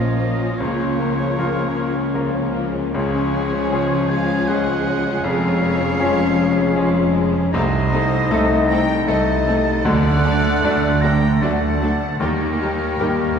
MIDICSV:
0, 0, Header, 1, 10, 480
1, 0, Start_track
1, 0, Tempo, 785340
1, 361, Time_signature, 3, 2, 24, 8
1, 2273, Tempo, 766284
1, 6113, Tempo, 786370
1, 8275, End_track
2, 0, Start_track
2, 0, Title_t, "Oboe"
2, 0, Program_c, 0, 68
2, 0, Note_on_c, 0, 75, 69
2, 350, Note_off_c, 0, 75, 0
2, 354, Note_on_c, 0, 73, 69
2, 1528, Note_off_c, 0, 73, 0
2, 1794, Note_on_c, 0, 73, 79
2, 2508, Note_on_c, 0, 80, 87
2, 2518, Note_off_c, 0, 73, 0
2, 2746, Note_on_c, 0, 78, 95
2, 2755, Note_off_c, 0, 80, 0
2, 3221, Note_on_c, 0, 77, 95
2, 3230, Note_off_c, 0, 78, 0
2, 4416, Note_off_c, 0, 77, 0
2, 4662, Note_on_c, 0, 75, 110
2, 5380, Note_on_c, 0, 82, 100
2, 5390, Note_off_c, 0, 75, 0
2, 5632, Note_on_c, 0, 81, 94
2, 5642, Note_off_c, 0, 82, 0
2, 6107, Note_off_c, 0, 81, 0
2, 6111, Note_on_c, 0, 78, 113
2, 6821, Note_on_c, 0, 82, 100
2, 6830, Note_off_c, 0, 78, 0
2, 7068, Note_on_c, 0, 81, 86
2, 7077, Note_off_c, 0, 82, 0
2, 7540, Note_off_c, 0, 81, 0
2, 7543, Note_on_c, 0, 70, 93
2, 8275, Note_off_c, 0, 70, 0
2, 8275, End_track
3, 0, Start_track
3, 0, Title_t, "Violin section"
3, 0, Program_c, 1, 48
3, 0, Note_on_c, 1, 72, 64
3, 347, Note_off_c, 1, 72, 0
3, 359, Note_on_c, 1, 70, 66
3, 1554, Note_off_c, 1, 70, 0
3, 1795, Note_on_c, 1, 68, 74
3, 2491, Note_off_c, 1, 68, 0
3, 2514, Note_on_c, 1, 77, 77
3, 2754, Note_off_c, 1, 77, 0
3, 2763, Note_on_c, 1, 75, 81
3, 3225, Note_on_c, 1, 73, 91
3, 3235, Note_off_c, 1, 75, 0
3, 4418, Note_off_c, 1, 73, 0
3, 4658, Note_on_c, 1, 72, 99
3, 5369, Note_off_c, 1, 72, 0
3, 5401, Note_on_c, 1, 79, 96
3, 5626, Note_on_c, 1, 75, 82
3, 5636, Note_off_c, 1, 79, 0
3, 6100, Note_off_c, 1, 75, 0
3, 6109, Note_on_c, 1, 74, 103
3, 6827, Note_off_c, 1, 74, 0
3, 6831, Note_on_c, 1, 79, 86
3, 7068, Note_off_c, 1, 79, 0
3, 7073, Note_on_c, 1, 78, 76
3, 7550, Note_off_c, 1, 78, 0
3, 7554, Note_on_c, 1, 67, 88
3, 8263, Note_off_c, 1, 67, 0
3, 8275, End_track
4, 0, Start_track
4, 0, Title_t, "Violin section"
4, 0, Program_c, 2, 48
4, 0, Note_on_c, 2, 61, 44
4, 0, Note_on_c, 2, 65, 52
4, 117, Note_off_c, 2, 61, 0
4, 130, Note_on_c, 2, 58, 46
4, 246, Note_off_c, 2, 58, 0
4, 253, Note_on_c, 2, 61, 46
4, 368, Note_off_c, 2, 61, 0
4, 374, Note_on_c, 2, 58, 51
4, 480, Note_off_c, 2, 58, 0
4, 483, Note_on_c, 2, 61, 47
4, 603, Note_off_c, 2, 61, 0
4, 612, Note_on_c, 2, 58, 50
4, 726, Note_off_c, 2, 58, 0
4, 734, Note_on_c, 2, 61, 50
4, 847, Note_off_c, 2, 61, 0
4, 859, Note_on_c, 2, 58, 51
4, 963, Note_on_c, 2, 61, 51
4, 968, Note_off_c, 2, 58, 0
4, 1078, Note_on_c, 2, 58, 54
4, 1079, Note_off_c, 2, 61, 0
4, 1195, Note_off_c, 2, 58, 0
4, 1199, Note_on_c, 2, 61, 51
4, 1309, Note_on_c, 2, 58, 55
4, 1316, Note_off_c, 2, 61, 0
4, 1432, Note_off_c, 2, 58, 0
4, 1433, Note_on_c, 2, 61, 51
4, 1555, Note_off_c, 2, 61, 0
4, 1559, Note_on_c, 2, 58, 54
4, 1678, Note_off_c, 2, 58, 0
4, 1679, Note_on_c, 2, 61, 52
4, 1773, Note_off_c, 2, 65, 0
4, 1797, Note_off_c, 2, 61, 0
4, 1803, Note_on_c, 2, 68, 62
4, 1804, Note_on_c, 2, 56, 58
4, 1911, Note_off_c, 2, 56, 0
4, 1922, Note_on_c, 2, 61, 53
4, 2037, Note_off_c, 2, 61, 0
4, 2048, Note_on_c, 2, 56, 60
4, 2160, Note_off_c, 2, 56, 0
4, 2168, Note_on_c, 2, 61, 59
4, 2275, Note_on_c, 2, 56, 59
4, 2281, Note_off_c, 2, 61, 0
4, 2396, Note_off_c, 2, 56, 0
4, 2401, Note_on_c, 2, 61, 57
4, 2519, Note_off_c, 2, 61, 0
4, 2526, Note_on_c, 2, 56, 58
4, 2642, Note_off_c, 2, 56, 0
4, 2655, Note_on_c, 2, 61, 59
4, 2765, Note_off_c, 2, 61, 0
4, 2773, Note_on_c, 2, 56, 65
4, 2883, Note_off_c, 2, 56, 0
4, 2886, Note_on_c, 2, 61, 58
4, 2999, Note_off_c, 2, 61, 0
4, 3010, Note_on_c, 2, 56, 61
4, 3121, Note_off_c, 2, 56, 0
4, 3128, Note_on_c, 2, 61, 61
4, 3240, Note_off_c, 2, 61, 0
4, 3254, Note_on_c, 2, 56, 64
4, 3354, Note_off_c, 2, 56, 0
4, 3376, Note_on_c, 2, 61, 62
4, 3482, Note_off_c, 2, 61, 0
4, 3490, Note_on_c, 2, 56, 67
4, 3598, Note_off_c, 2, 56, 0
4, 3600, Note_on_c, 2, 61, 67
4, 3712, Note_off_c, 2, 61, 0
4, 3719, Note_on_c, 2, 56, 70
4, 3831, Note_off_c, 2, 56, 0
4, 3837, Note_on_c, 2, 61, 66
4, 3940, Note_on_c, 2, 56, 67
4, 3950, Note_off_c, 2, 61, 0
4, 4061, Note_off_c, 2, 56, 0
4, 4067, Note_on_c, 2, 61, 67
4, 4185, Note_off_c, 2, 61, 0
4, 4194, Note_on_c, 2, 56, 74
4, 4308, Note_off_c, 2, 56, 0
4, 4316, Note_on_c, 2, 61, 69
4, 4429, Note_off_c, 2, 61, 0
4, 4430, Note_on_c, 2, 56, 70
4, 4546, Note_off_c, 2, 56, 0
4, 4551, Note_on_c, 2, 61, 66
4, 4662, Note_on_c, 2, 69, 72
4, 4663, Note_on_c, 2, 63, 71
4, 4666, Note_off_c, 2, 68, 0
4, 4667, Note_off_c, 2, 61, 0
4, 4712, Note_off_c, 2, 69, 0
4, 4713, Note_off_c, 2, 63, 0
4, 4917, Note_on_c, 2, 63, 70
4, 4917, Note_on_c, 2, 69, 69
4, 4967, Note_off_c, 2, 63, 0
4, 4967, Note_off_c, 2, 69, 0
4, 5148, Note_on_c, 2, 69, 69
4, 5149, Note_on_c, 2, 63, 69
4, 5198, Note_off_c, 2, 69, 0
4, 5199, Note_off_c, 2, 63, 0
4, 5398, Note_on_c, 2, 69, 67
4, 5400, Note_on_c, 2, 63, 66
4, 5448, Note_off_c, 2, 69, 0
4, 5450, Note_off_c, 2, 63, 0
4, 5633, Note_on_c, 2, 63, 70
4, 5634, Note_on_c, 2, 69, 69
4, 5683, Note_off_c, 2, 63, 0
4, 5684, Note_off_c, 2, 69, 0
4, 5877, Note_on_c, 2, 69, 68
4, 5882, Note_on_c, 2, 63, 70
4, 5927, Note_off_c, 2, 69, 0
4, 5932, Note_off_c, 2, 63, 0
4, 6127, Note_on_c, 2, 62, 69
4, 6128, Note_on_c, 2, 69, 72
4, 6176, Note_off_c, 2, 62, 0
4, 6177, Note_off_c, 2, 69, 0
4, 6354, Note_on_c, 2, 62, 64
4, 6357, Note_on_c, 2, 69, 69
4, 6403, Note_off_c, 2, 62, 0
4, 6406, Note_off_c, 2, 69, 0
4, 6590, Note_on_c, 2, 62, 66
4, 6594, Note_on_c, 2, 69, 65
4, 6639, Note_off_c, 2, 62, 0
4, 6643, Note_off_c, 2, 69, 0
4, 6838, Note_on_c, 2, 62, 65
4, 6839, Note_on_c, 2, 69, 66
4, 6887, Note_off_c, 2, 62, 0
4, 6888, Note_off_c, 2, 69, 0
4, 7077, Note_on_c, 2, 62, 69
4, 7080, Note_on_c, 2, 69, 67
4, 7126, Note_off_c, 2, 62, 0
4, 7129, Note_off_c, 2, 69, 0
4, 7316, Note_on_c, 2, 69, 62
4, 7317, Note_on_c, 2, 62, 62
4, 7365, Note_off_c, 2, 69, 0
4, 7366, Note_off_c, 2, 62, 0
4, 7561, Note_on_c, 2, 67, 68
4, 7564, Note_off_c, 2, 67, 0
4, 7564, Note_on_c, 2, 67, 67
4, 7613, Note_off_c, 2, 67, 0
4, 7797, Note_on_c, 2, 67, 60
4, 7802, Note_off_c, 2, 67, 0
4, 7802, Note_on_c, 2, 67, 57
4, 7851, Note_off_c, 2, 67, 0
4, 8037, Note_on_c, 2, 67, 60
4, 8086, Note_off_c, 2, 67, 0
4, 8275, End_track
5, 0, Start_track
5, 0, Title_t, "French horn section"
5, 0, Program_c, 3, 60
5, 0, Note_on_c, 3, 58, 54
5, 0, Note_on_c, 3, 61, 55
5, 339, Note_off_c, 3, 61, 0
5, 340, Note_off_c, 3, 58, 0
5, 359, Note_on_c, 3, 61, 59
5, 362, Note_on_c, 3, 58, 63
5, 1771, Note_off_c, 3, 61, 0
5, 1772, Note_off_c, 3, 58, 0
5, 1795, Note_on_c, 3, 61, 70
5, 1797, Note_on_c, 3, 53, 71
5, 3123, Note_off_c, 3, 53, 0
5, 3123, Note_off_c, 3, 61, 0
5, 3229, Note_on_c, 3, 61, 80
5, 3233, Note_on_c, 3, 56, 77
5, 4636, Note_off_c, 3, 61, 0
5, 4663, Note_off_c, 3, 56, 0
5, 4663, Note_on_c, 3, 57, 88
5, 4664, Note_on_c, 3, 63, 85
5, 5614, Note_off_c, 3, 57, 0
5, 5615, Note_off_c, 3, 63, 0
5, 5633, Note_on_c, 3, 57, 79
5, 5639, Note_on_c, 3, 63, 73
5, 6103, Note_off_c, 3, 57, 0
5, 6106, Note_off_c, 3, 63, 0
5, 6116, Note_on_c, 3, 57, 88
5, 6116, Note_on_c, 3, 62, 82
5, 7050, Note_off_c, 3, 57, 0
5, 7068, Note_off_c, 3, 62, 0
5, 7076, Note_on_c, 3, 62, 71
5, 7078, Note_on_c, 3, 57, 71
5, 7449, Note_off_c, 3, 57, 0
5, 7449, Note_off_c, 3, 62, 0
5, 7552, Note_on_c, 3, 67, 81
5, 7554, Note_on_c, 3, 58, 78
5, 8275, Note_off_c, 3, 58, 0
5, 8275, Note_off_c, 3, 67, 0
5, 8275, End_track
6, 0, Start_track
6, 0, Title_t, "Grand piano"
6, 0, Program_c, 4, 0
6, 0, Control_c, 4, 64, 127
6, 0, Note_on_c, 4, 34, 51
6, 0, Note_on_c, 4, 46, 54
6, 0, Note_on_c, 4, 53, 40
6, 0, Note_on_c, 4, 65, 41
6, 0, Note_on_c, 4, 73, 47
6, 337, Note_off_c, 4, 53, 0
6, 337, Note_off_c, 4, 65, 0
6, 339, Note_off_c, 4, 73, 0
6, 343, Note_off_c, 4, 46, 0
6, 344, Note_off_c, 4, 34, 0
6, 367, Note_on_c, 4, 37, 59
6, 367, Note_on_c, 4, 49, 54
6, 372, Control_c, 4, 64, 0
6, 459, Control_c, 4, 64, 127
6, 845, Note_on_c, 4, 53, 50
6, 848, Note_on_c, 4, 70, 53
6, 850, Note_on_c, 4, 65, 48
6, 1292, Note_off_c, 4, 53, 0
6, 1293, Note_off_c, 4, 70, 0
6, 1294, Note_off_c, 4, 65, 0
6, 1311, Note_on_c, 4, 53, 47
6, 1315, Note_on_c, 4, 70, 52
6, 1317, Note_on_c, 4, 65, 45
6, 1770, Note_off_c, 4, 53, 0
6, 1772, Note_off_c, 4, 70, 0
6, 1773, Note_off_c, 4, 65, 0
6, 1775, Note_off_c, 4, 37, 0
6, 1775, Note_off_c, 4, 49, 0
6, 1798, Note_on_c, 4, 49, 59
6, 1799, Note_on_c, 4, 37, 69
6, 1807, Control_c, 4, 64, 0
6, 1919, Control_c, 4, 64, 127
6, 2275, Note_on_c, 4, 53, 57
6, 2277, Note_on_c, 4, 61, 54
6, 2278, Note_on_c, 4, 68, 63
6, 2732, Note_off_c, 4, 53, 0
6, 2733, Note_off_c, 4, 61, 0
6, 2733, Note_off_c, 4, 68, 0
6, 2756, Note_on_c, 4, 53, 53
6, 2759, Note_on_c, 4, 61, 53
6, 2762, Note_on_c, 4, 68, 59
6, 3207, Note_off_c, 4, 53, 0
6, 3208, Note_off_c, 4, 37, 0
6, 3208, Note_off_c, 4, 49, 0
6, 3208, Note_off_c, 4, 61, 0
6, 3210, Note_off_c, 4, 68, 0
6, 3226, Note_on_c, 4, 41, 78
6, 3229, Note_on_c, 4, 29, 71
6, 3242, Control_c, 4, 64, 0
6, 3340, Control_c, 4, 64, 127
6, 3699, Note_on_c, 4, 61, 64
6, 3702, Note_on_c, 4, 53, 66
6, 3705, Note_on_c, 4, 68, 71
6, 4155, Note_off_c, 4, 61, 0
6, 4156, Note_off_c, 4, 53, 0
6, 4157, Note_off_c, 4, 68, 0
6, 4179, Note_on_c, 4, 53, 62
6, 4180, Note_on_c, 4, 61, 60
6, 4181, Note_on_c, 4, 68, 64
6, 4634, Note_off_c, 4, 41, 0
6, 4635, Note_off_c, 4, 53, 0
6, 4636, Note_off_c, 4, 29, 0
6, 4636, Note_off_c, 4, 61, 0
6, 4636, Note_off_c, 4, 68, 0
6, 4665, Note_on_c, 4, 48, 77
6, 4669, Note_on_c, 4, 36, 86
6, 4672, Control_c, 4, 64, 0
6, 4759, Control_c, 4, 64, 127
6, 5147, Note_on_c, 4, 57, 67
6, 5148, Note_on_c, 4, 63, 66
6, 5150, Note_on_c, 4, 69, 72
6, 5605, Note_off_c, 4, 57, 0
6, 5606, Note_off_c, 4, 63, 0
6, 5607, Note_off_c, 4, 69, 0
6, 5626, Note_on_c, 4, 57, 60
6, 5630, Note_on_c, 4, 63, 63
6, 5631, Note_on_c, 4, 69, 69
6, 6085, Note_off_c, 4, 57, 0
6, 6087, Note_off_c, 4, 63, 0
6, 6087, Note_off_c, 4, 69, 0
6, 6090, Note_off_c, 4, 48, 0
6, 6092, Note_off_c, 4, 36, 0
6, 6114, Note_on_c, 4, 38, 82
6, 6114, Note_on_c, 4, 50, 79
6, 6123, Control_c, 4, 64, 0
6, 6203, Control_c, 4, 64, 127
6, 6598, Note_on_c, 4, 57, 69
6, 6601, Note_on_c, 4, 62, 66
6, 6601, Note_on_c, 4, 74, 72
6, 7046, Note_off_c, 4, 57, 0
6, 7048, Note_off_c, 4, 62, 0
6, 7048, Note_off_c, 4, 74, 0
6, 7071, Note_on_c, 4, 57, 59
6, 7077, Note_on_c, 4, 62, 56
6, 7077, Note_on_c, 4, 74, 63
6, 7523, Note_off_c, 4, 38, 0
6, 7523, Note_off_c, 4, 50, 0
6, 7524, Note_off_c, 4, 57, 0
6, 7527, Note_off_c, 4, 62, 0
6, 7527, Note_off_c, 4, 74, 0
6, 7549, Note_on_c, 4, 51, 69
6, 7550, Note_on_c, 4, 39, 80
6, 7559, Control_c, 4, 64, 0
6, 7639, Control_c, 4, 64, 127
6, 8036, Note_on_c, 4, 55, 56
6, 8038, Note_on_c, 4, 67, 56
6, 8042, Note_on_c, 4, 70, 62
6, 8275, Note_off_c, 4, 39, 0
6, 8275, Note_off_c, 4, 51, 0
6, 8275, Note_off_c, 4, 55, 0
6, 8275, Note_off_c, 4, 67, 0
6, 8275, Note_off_c, 4, 70, 0
6, 8275, End_track
7, 0, Start_track
7, 0, Title_t, "Viola section"
7, 0, Program_c, 5, 48
7, 0, Note_on_c, 5, 53, 47
7, 0, Note_on_c, 5, 58, 47
7, 1773, Note_off_c, 5, 53, 0
7, 1773, Note_off_c, 5, 58, 0
7, 1796, Note_on_c, 5, 56, 62
7, 1800, Note_on_c, 5, 53, 60
7, 4639, Note_off_c, 5, 53, 0
7, 4660, Note_on_c, 5, 60, 71
7, 4662, Note_off_c, 5, 56, 0
7, 4662, Note_on_c, 5, 57, 70
7, 4711, Note_off_c, 5, 60, 0
7, 4712, Note_off_c, 5, 57, 0
7, 4913, Note_on_c, 5, 57, 68
7, 4913, Note_on_c, 5, 60, 66
7, 4963, Note_off_c, 5, 57, 0
7, 4963, Note_off_c, 5, 60, 0
7, 5156, Note_on_c, 5, 57, 63
7, 5156, Note_on_c, 5, 60, 68
7, 5206, Note_off_c, 5, 57, 0
7, 5207, Note_off_c, 5, 60, 0
7, 5398, Note_on_c, 5, 60, 66
7, 5399, Note_on_c, 5, 57, 60
7, 5448, Note_off_c, 5, 60, 0
7, 5449, Note_off_c, 5, 57, 0
7, 5638, Note_on_c, 5, 57, 70
7, 5640, Note_on_c, 5, 60, 68
7, 5688, Note_off_c, 5, 57, 0
7, 5690, Note_off_c, 5, 60, 0
7, 5876, Note_on_c, 5, 57, 64
7, 5877, Note_on_c, 5, 60, 66
7, 5927, Note_off_c, 5, 57, 0
7, 5927, Note_off_c, 5, 60, 0
7, 6113, Note_on_c, 5, 54, 68
7, 6115, Note_on_c, 5, 57, 70
7, 6162, Note_off_c, 5, 54, 0
7, 6164, Note_off_c, 5, 57, 0
7, 6353, Note_on_c, 5, 54, 62
7, 6355, Note_on_c, 5, 57, 68
7, 6402, Note_off_c, 5, 54, 0
7, 6404, Note_off_c, 5, 57, 0
7, 6595, Note_on_c, 5, 57, 62
7, 6599, Note_on_c, 5, 54, 61
7, 6644, Note_off_c, 5, 57, 0
7, 6648, Note_off_c, 5, 54, 0
7, 6832, Note_on_c, 5, 57, 63
7, 6834, Note_on_c, 5, 54, 56
7, 6881, Note_off_c, 5, 57, 0
7, 6882, Note_off_c, 5, 54, 0
7, 7069, Note_on_c, 5, 57, 67
7, 7070, Note_on_c, 5, 54, 65
7, 7118, Note_off_c, 5, 57, 0
7, 7119, Note_off_c, 5, 54, 0
7, 7312, Note_on_c, 5, 57, 61
7, 7315, Note_on_c, 5, 54, 61
7, 7361, Note_off_c, 5, 57, 0
7, 7364, Note_off_c, 5, 54, 0
7, 7553, Note_on_c, 5, 55, 68
7, 7553, Note_on_c, 5, 63, 68
7, 7602, Note_off_c, 5, 55, 0
7, 7602, Note_off_c, 5, 63, 0
7, 7803, Note_on_c, 5, 63, 59
7, 7804, Note_on_c, 5, 55, 58
7, 7852, Note_off_c, 5, 63, 0
7, 7853, Note_off_c, 5, 55, 0
7, 8041, Note_on_c, 5, 63, 56
7, 8042, Note_on_c, 5, 55, 52
7, 8090, Note_off_c, 5, 63, 0
7, 8091, Note_off_c, 5, 55, 0
7, 8275, End_track
8, 0, Start_track
8, 0, Title_t, "Timpani"
8, 0, Program_c, 6, 47
8, 6112, Note_on_c, 6, 50, 85
8, 6804, Note_off_c, 6, 50, 0
8, 8275, End_track
9, 0, Start_track
9, 0, Title_t, "Cello section"
9, 0, Program_c, 7, 48
9, 0, Note_on_c, 7, 46, 50
9, 339, Note_off_c, 7, 46, 0
9, 359, Note_on_c, 7, 49, 53
9, 3228, Note_on_c, 7, 41, 72
9, 3231, Note_off_c, 7, 49, 0
9, 4635, Note_off_c, 7, 41, 0
9, 4654, Note_on_c, 7, 36, 84
9, 5092, Note_off_c, 7, 36, 0
9, 5151, Note_on_c, 7, 36, 84
9, 5576, Note_off_c, 7, 36, 0
9, 5632, Note_on_c, 7, 36, 82
9, 6056, Note_off_c, 7, 36, 0
9, 6115, Note_on_c, 7, 38, 81
9, 6536, Note_off_c, 7, 38, 0
9, 6589, Note_on_c, 7, 38, 81
9, 7010, Note_off_c, 7, 38, 0
9, 7070, Note_on_c, 7, 38, 73
9, 7492, Note_off_c, 7, 38, 0
9, 7552, Note_on_c, 7, 39, 77
9, 7974, Note_off_c, 7, 39, 0
9, 8033, Note_on_c, 7, 39, 72
9, 8275, Note_off_c, 7, 39, 0
9, 8275, End_track
10, 0, Start_track
10, 0, Title_t, "Double bass section"
10, 0, Program_c, 8, 48
10, 0, Note_on_c, 8, 34, 50
10, 335, Note_off_c, 8, 34, 0
10, 356, Note_on_c, 8, 37, 57
10, 3228, Note_on_c, 8, 29, 70
10, 3229, Note_off_c, 8, 37, 0
10, 4635, Note_off_c, 8, 29, 0
10, 4660, Note_on_c, 8, 36, 87
10, 5095, Note_off_c, 8, 36, 0
10, 5148, Note_on_c, 8, 36, 79
10, 5574, Note_off_c, 8, 36, 0
10, 5630, Note_on_c, 8, 36, 82
10, 6054, Note_off_c, 8, 36, 0
10, 6106, Note_on_c, 8, 38, 87
10, 6532, Note_off_c, 8, 38, 0
10, 6589, Note_on_c, 8, 38, 84
10, 7010, Note_off_c, 8, 38, 0
10, 7066, Note_on_c, 8, 38, 76
10, 7490, Note_off_c, 8, 38, 0
10, 7547, Note_on_c, 8, 39, 75
10, 7971, Note_off_c, 8, 39, 0
10, 8034, Note_on_c, 8, 39, 72
10, 8275, Note_off_c, 8, 39, 0
10, 8275, End_track
0, 0, End_of_file